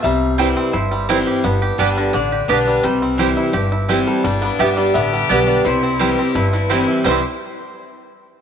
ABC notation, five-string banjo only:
X:1
M:4/4
L:1/8
Q:1/4=171
K:C
V:1 name="Five-string banjo"
G,2 G, C E G, C G | B, G G, D, D G D G, | G, C G E G E G G, | G, B, D G, B, G, B, D |
E, C G, C E E, C E | [G,CEG] z6 z |]